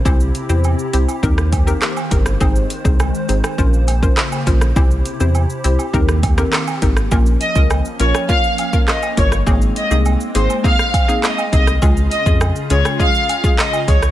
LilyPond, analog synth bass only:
\new Staff \with { instrumentName = "Analog synth bass" } { \clef bass \time 4/4 \key bes \dorian \tempo 4 = 102 c,8 r16 e,8 r16 c,16 r16 ees,4 r8 g,,8 | aes,,8 r16 c,8 r16 aes,,16 r16 bes,,4 r8 bes,,8 | c,8 r16 e,8 r16 c,16 r16 ees,4 r8 aes,,8 | bes,,8 r16 des,8 r16 bes,,16 r4. r16 g,,8 |
aes,,8 r16 c,8 r16 aes,,16 r4. r16 c,8 | des,8 r16 f,8 r16 des,16 r4. r16 des,8 | }